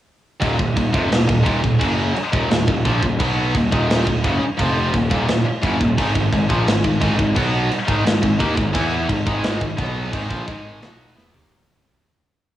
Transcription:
0.41 picked electric bass D#1, distorted electric guitar D#2 A#2, kick, crash
0.59 picked electric bass D#1, distorted electric guitar D#2 A#2, kick
0.76 picked electric bass D#1, distorted electric guitar D#2 A#2, kick, crash
0.93 picked electric bass F1, distorted electric guitar F2 C3, kick
1.10 picked electric bass D#1, distorted electric guitar D#2 A#2, snare, crash
1.27 picked electric bass D#1, distorted electric guitar D#2 A#2, kick
1.43 picked electric bass D#1, distorted electric guitar D#2 A#2, kick, crash
1.61 picked electric bass D#1, distorted electric guitar D#2 A#2, kick
1.79 picked electric bass F#1, distorted electric guitar F#2 C#3 F#3, kick, crash
2.15 muted distorted electric guitar stroke, muted picked electric bass stroke, crash
2.32 picked electric bass D#1, distorted electric guitar D#2 A#2, kick
2.49 picked electric bass D#1, distorted electric guitar D#2 A#2, snare, crash
2.67 picked electric bass D#1, distorted electric guitar D#2 A#2, kick
2.85 picked electric bass A#1, distorted electric guitar A#2 F3, kick, crash
3.02 picked electric bass D#1, distorted electric guitar D#2 A#2, kick
3.19 picked electric bass B1, distorted electric guitar B2 F#3 B3, kick, crash
3.54 picked electric bass D#1, distorted electric guitar D#2 A#2, kick, crash
3.71 picked electric bass D#1, distorted electric guitar D#2 A#2 D#3, kick
3.90 snare, crash
4.06 picked electric bass D#1, distorted electric guitar D#2 A#2, kick
4.24 picked electric bass F#1, distorted electric guitar F#2 C#3, kick, crash
4.41 muted distorted electric guitar stroke, muted picked electric bass stroke
4.57 picked electric bass F1, distorted electric guitar F2 C3 F3, kick, crash
4.93 picked electric bass D#1, distorted electric guitar D#2 A#2, kick, crash
5.10 picked electric bass D#1, distorted electric guitar D#2 A#2, kick
5.27 picked electric bass D#1, distorted electric guitar D#2 A#2, snare, crash
5.45 muted distorted electric guitar stroke, muted picked electric bass stroke
5.62 picked electric bass F#1, distorted electric guitar F#2 C#3, kick, crash
5.79 picked electric bass D#1, distorted electric guitar D#2 A#2, kick
5.98 picked electric bass G#1, distorted electric guitar G#2 D#3, kick, crash
6.14 picked electric bass G#1, distorted electric guitar G#2 D#3, kick
6.33 picked electric bass G#1, distorted electric guitar G#2 D#3, kick, crash
6.49 picked electric bass A#1, distorted electric guitar A#2 F3, kick
6.66 picked electric bass G#1, distorted electric guitar G#2 D#3, snare, crash
6.84 picked electric bass G#1, distorted electric guitar G#2 D#3, kick
7.00 picked electric bass G#1, distorted electric guitar G#2 D#3, kick, crash
7.17 picked electric bass G#1, distorted electric guitar G#2 D#3, kick
7.35 picked electric bass B1, distorted electric guitar B2 F#3 B3, kick, crash
7.71 muted distorted electric guitar stroke, muted picked electric bass stroke, crash
7.87 picked electric bass G#1, distorted electric guitar G#2 D#3, kick
8.05 picked electric bass G#1, distorted electric guitar G#2 D#3, snare, crash
8.22 picked electric bass G#1, distorted electric guitar G#2 D#3, kick
8.39 picked electric bass D#2, distorted electric guitar D#3 A#3, kick, crash
8.55 picked electric bass G#1, distorted electric guitar G#2 D#3, kick
8.73 picked electric bass E2, distorted electric guitar E3 B3 E4, kick, crash
9.08 picked electric bass G#1, distorted electric guitar G#2 D#3, kick, crash
9.26 picked electric bass G#1, distorted electric guitar G#2 D#3 G#3, kick
9.44 snare, crash
9.60 picked electric bass G#1, distorted electric guitar G#2 D#3, kick
9.77 picked electric bass B1, distorted electric guitar B2 F#3 B3, kick, crash
10.11 picked electric bass G#1, distorted electric guitar G#2 D#3, kick, crash
10.30 picked electric bass A#1, distorted electric guitar A#2 F3, kick
10.47 picked electric bass G#1, distorted electric guitar G#2 D#3 G#3, kick, crash
10.81 picked electric bass B1, distorted electric guitar B2 F#3 B3, snare, crash
11.15 picked electric bass E2, distorted electric guitar E3 B3, snare
11.33 picked electric bass D#2, distorted electric guitar D#3 A#3, floor tom

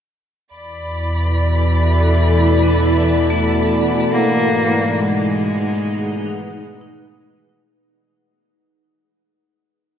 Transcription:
0.51 sub bass E2, synth drone B2 E3, ambient pad E4, violin section D5 B5
0.88 ambient pad A4
1.15 ambient pad D5
2.13 ambient pad F#5
2.63 vibraphone B3
3.30 vibraphone A3
4.10 sub bass G#2, cello A#3, ambient pad D#4
4.57 ambient pad G#4
4.65 vibraphone G#3
5.00 cello G#3
5.39 ambient pad B4
6.81 vibraphone D#4

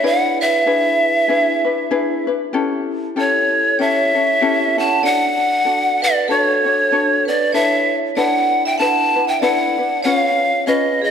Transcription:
0.03 ukulele D4 E4 G#4 B4, vibraphone D5, pan flute F#5
0.41 vibraphone B4, pan flute E5
0.66 ukulele D4 E4 G#4 B4
1.28 ukulele D4 E4 G#4 B4
1.65 ukulele D4 E4 B4
1.91 ukulele D4 E4 G#4 B4
2.27 ukulele D4 E4 B4
2.53 ukulele C#4 E4 G4 A4
3.16 ukulele C#4 E4 G4 A4, vibraphone A4, pan flute C#5
3.79 ukulele C#4 E4 G4 A4, vibraphone C#5, pan flute E5
4.15 ukulele C#4 E4 A4
4.41 ukulele C#4 E4 G4 A4
4.77 ukulele C#4 E4 A4, vibraphone F#5, pan flute A5
5.03 ukulele D4 F#4 A4, vibraphone D5, pan flute F#5
5.65 ukulele D4 F#4 A4
6.02 vibraphone B4, pan flute D5
6.28 ukulele D4 F#4 A4 C#5, vibraphone A4, pan flute D5
6.41 pan flute C#5
6.65 ukulele D4 F#4 C#5
6.92 ukulele D4 F#4 A4 C#5
7.25 ukulele F#4, vibraphone B4, pan flute D5
7.29 ukulele D4
7.52 ukulele D4 E4 A4 B4, vibraphone C#5, pan flute E5
8.15 ukulele D4 E4 A4 B4, vibraphone D5, pan flute F#5
8.65 vibraphone E5, pan flute G5
8.78 ukulele D4 E4 A4 B4, vibraphone F#5, pan flute A5
9.16 ukulele D4 E4 B4
9.27 vibraphone E5, pan flute G5
9.40 ukulele D4 E4 A4 B4, vibraphone D5, pan flute F#5
9.78 ukulele D4 E4 B4
10.03 ukulele C#4 F4 G#4 B4, vibraphone C#5, pan flute F#5
10.14 pan flute F5
10.66 ukulele C#4 F4 G#4 B4, vibraphone B4, pan flute D#5
11.02 vibraphone G#4, pan flute C#5

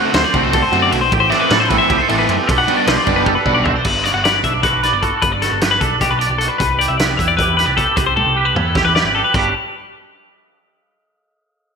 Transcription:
Already playing: overdriven electric guitar D3 A3 C4 F#4, clean electric guitar D3 F#4 C5
0.05 clean electric guitar E5
0.14 picked electric bass D2, clean electric guitar C5, snare, ride
0.24 clean electric guitar D5
0.34 picked electric bass C2, overdriven electric guitar D3 A3 C4 F#4, clean electric guitar A3 C4, kick, ride
0.44 clean electric guitar C5
0.53 picked electric bass C2, clean electric guitar D3 A4, kick, ride
0.63 clean electric guitar C5
0.72 picked electric bass F#2, clean electric guitar C3, overdriven electric guitar D3 A3 C4 F#4, ride
0.82 clean electric guitar D5
0.91 picked electric bass B1, clean electric guitar B2 E5, ride
1.01 clean electric guitar C5
1.12 picked electric bass A1, clean electric guitar A2 G4, kick, ride
1.20 clean electric guitar C5
1.30 overdriven electric guitar E3 A3 C4 E4, clean electric guitar D4 D5, snare, ride
1.40 clean electric guitar B4
1.50 picked electric bass A2, clean electric guitar A4, snare, ride
1.60 clean electric guitar C5
1.69 picked electric bass A1, overdriven electric guitar E3 A3 C4 E4, clean electric guitar A3 C4 B4, kick, ride
1.78 clean electric guitar E5
1.90 picked electric bass C2, clean electric guitar G4, kick, ride
1.98 clean electric guitar A4 C5
2.08 picked electric bass A1, clean electric guitar E3 D4 A4, overdriven electric guitar E3 A3 C4 E4, ride
2.19 clean electric guitar B4
2.28 picked electric bass F#2, clean electric guitar C4, ride
2.38 clean electric guitar G4
2.47 picked electric bass B1, clean electric guitar B2 G3 D4 F#4 A4, kick, ride
2.52 clean electric guitar B4
2.58 clean electric guitar F#5
2.67 overdriven electric guitar B2 G3 B3 D4, clean electric guitar F#4, ride
2.77 clean electric guitar D5
2.87 picked electric bass B1, clean electric guitar B4 C5, snare, ride
2.97 clean electric guitar D5
3.06 picked electric bass F#1, overdriven electric guitar B2 G3 B3 D4, clean electric guitar G3 D4, kick, ride
3.16 clean electric guitar B4
3.26 picked electric bass F#1, clean electric guitar G4 A4, kick
3.35 clean electric guitar B4
3.45 picked electric bass B1, clean electric guitar B2 F#4, overdriven electric guitar B2 G3 B3 D4, kick
3.55 clean electric guitar D5
3.64 picked electric bass B1, clean electric guitar C4 E5, floor tom
3.74 clean electric guitar D4 C5
3.84 picked electric bass G1, clean electric guitar G2 B4, kick, crash
4.04 clean electric guitar F#4 D5, snare, closed hi-hat
4.14 picked electric bass G1, clean electric guitar F#5
4.24 clean electric guitar B4 D5, snare, closed hi-hat
4.43 picked electric bass B1, clean electric guitar D4 E5, kick, closed hi-hat
4.54 clean electric guitar D5
4.63 clean electric guitar F#4 B4, kick, snare, closed hi-hat
4.72 picked electric bass B1
4.83 clean electric guitar B4 D5, snare, closed hi-hat
4.92 picked electric bass G1, clean electric guitar D5
5.02 clean electric guitar F#4 A4, kick, closed hi-hat
5.21 picked electric bass G1, clean electric guitar G2 B4, kick, closed hi-hat
5.32 clean electric guitar D5
5.42 clean electric guitar F#4 A4, snare, closed hi-hat
5.52 picked electric bass G1
5.61 clean electric guitar G4 B4, snare, closed hi-hat
5.71 clean electric guitar B4
5.81 picked electric bass B1, clean electric guitar D4 A4, kick, closed hi-hat
6.01 clean electric guitar F#4 G4, kick, snare, closed hi-hat
6.11 picked electric bass B1, clean electric guitar B4
6.19 clean electric guitar D5, closed hi-hat
6.30 picked electric bass B1
6.38 clean electric guitar F#4 A4, closed hi-hat
6.48 clean electric guitar B4
6.58 picked electric bass C2, clean electric guitar C3 B4, kick, closed hi-hat
6.79 clean electric guitar G4 D5, closed hi-hat
6.88 picked electric bass C2, clean electric guitar E5
6.97 clean electric guitar B4 D5, snare, closed hi-hat
7.17 picked electric bass E2, clean electric guitar E4 E5, kick, closed hi-hat
7.28 clean electric guitar D5
7.37 clean electric guitar G4 B4, kick, closed hi-hat
7.48 picked electric bass E2
7.57 clean electric guitar B4, snare, closed hi-hat
7.66 picked electric bass C2, clean electric guitar D5
7.77 clean electric guitar G4 A4, kick, closed hi-hat
7.96 picked electric bass C2, clean electric guitar C3 B4, kick, closed hi-hat
8.07 clean electric guitar C5
8.16 clean electric guitar G4 A4, high tom
8.26 picked electric bass C2
8.36 clean electric guitar G4 B4
8.45 clean electric guitar B4
8.55 picked electric bass E2, clean electric guitar E4 A4, mid tom
8.75 clean electric guitar G4, kick, snare
8.84 picked electric bass E2, clean electric guitar B4
8.95 clean electric guitar B4 D5, snare
9.03 picked electric bass G#1
9.15 clean electric guitar G4 A4
9.24 clean electric guitar B4
9.34 picked electric bass G1, clean electric guitar G2 G3 D4 F#4 G4 B4, kick, crash

